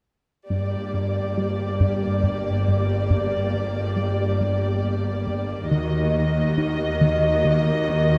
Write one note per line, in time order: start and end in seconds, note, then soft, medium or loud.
0.49 5.68 G1 soft
0.49 5.68 G2 soft
0.49 0.76 G2 medium
0.49 5.68 A#3 soft
0.49 5.68 G4 soft
0.49 5.68 D5 soft
0.94 1.20 G2 soft
1.37 1.63 G3 soft
1.80 2.07 G2 medium
2.23 2.50 G2 soft
2.68 2.94 G2 soft
3.10 3.37 G2 medium
3.54 3.80 G2 soft
3.96 4.23 G3 soft
4.41 4.67 G2 medium
4.83 5.10 G2 soft
5.27 5.54 G2 soft
5.71 8.18 D#2 soft
5.71 5.98 D#3 medium
5.71 8.18 D#3 soft
5.71 8.18 A#3 soft
5.71 8.18 F#4 soft
5.71 8.18 D#5 soft
6.14 6.41 D#3 soft
6.58 6.84 D#4 soft
7.01 7.28 D#3 medium
7.44 7.71 D#3 soft
7.89 8.15 D#3 medium